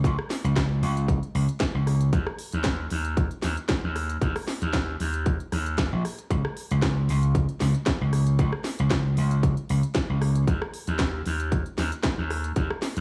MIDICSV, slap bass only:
0, 0, Header, 1, 2, 480
1, 0, Start_track
1, 0, Tempo, 521739
1, 40, Time_signature, 4, 2, 24, 8
1, 11966, End_track
2, 0, Start_track
2, 0, Title_t, "Slap bass"
2, 0, Program_c, 0, 36
2, 40, Note_on_c, 0, 37, 91
2, 146, Note_off_c, 0, 37, 0
2, 407, Note_on_c, 0, 37, 93
2, 728, Note_off_c, 0, 37, 0
2, 758, Note_on_c, 0, 37, 78
2, 1091, Note_off_c, 0, 37, 0
2, 1239, Note_on_c, 0, 37, 78
2, 1345, Note_off_c, 0, 37, 0
2, 1606, Note_on_c, 0, 37, 86
2, 1927, Note_off_c, 0, 37, 0
2, 1957, Note_on_c, 0, 39, 96
2, 2064, Note_off_c, 0, 39, 0
2, 2331, Note_on_c, 0, 39, 92
2, 2650, Note_off_c, 0, 39, 0
2, 2681, Note_on_c, 0, 39, 81
2, 3012, Note_off_c, 0, 39, 0
2, 3165, Note_on_c, 0, 39, 81
2, 3268, Note_off_c, 0, 39, 0
2, 3532, Note_on_c, 0, 39, 88
2, 3851, Note_off_c, 0, 39, 0
2, 3880, Note_on_c, 0, 39, 96
2, 3986, Note_off_c, 0, 39, 0
2, 4249, Note_on_c, 0, 39, 94
2, 4569, Note_off_c, 0, 39, 0
2, 4604, Note_on_c, 0, 39, 76
2, 4934, Note_off_c, 0, 39, 0
2, 5082, Note_on_c, 0, 39, 86
2, 5413, Note_off_c, 0, 39, 0
2, 5452, Note_on_c, 0, 34, 80
2, 5542, Note_off_c, 0, 34, 0
2, 5802, Note_on_c, 0, 37, 94
2, 5906, Note_off_c, 0, 37, 0
2, 6174, Note_on_c, 0, 37, 97
2, 6492, Note_off_c, 0, 37, 0
2, 6528, Note_on_c, 0, 37, 78
2, 6856, Note_off_c, 0, 37, 0
2, 7004, Note_on_c, 0, 37, 81
2, 7107, Note_off_c, 0, 37, 0
2, 7371, Note_on_c, 0, 37, 88
2, 7690, Note_off_c, 0, 37, 0
2, 7721, Note_on_c, 0, 37, 95
2, 7826, Note_off_c, 0, 37, 0
2, 8092, Note_on_c, 0, 37, 99
2, 8410, Note_off_c, 0, 37, 0
2, 8442, Note_on_c, 0, 37, 76
2, 8773, Note_off_c, 0, 37, 0
2, 8922, Note_on_c, 0, 37, 83
2, 9026, Note_off_c, 0, 37, 0
2, 9288, Note_on_c, 0, 37, 87
2, 9608, Note_off_c, 0, 37, 0
2, 9637, Note_on_c, 0, 39, 97
2, 9744, Note_off_c, 0, 39, 0
2, 10007, Note_on_c, 0, 39, 98
2, 10328, Note_off_c, 0, 39, 0
2, 10363, Note_on_c, 0, 39, 77
2, 10693, Note_off_c, 0, 39, 0
2, 10841, Note_on_c, 0, 39, 85
2, 10946, Note_off_c, 0, 39, 0
2, 11206, Note_on_c, 0, 39, 86
2, 11528, Note_off_c, 0, 39, 0
2, 11559, Note_on_c, 0, 39, 98
2, 11665, Note_off_c, 0, 39, 0
2, 11930, Note_on_c, 0, 39, 97
2, 11966, Note_off_c, 0, 39, 0
2, 11966, End_track
0, 0, End_of_file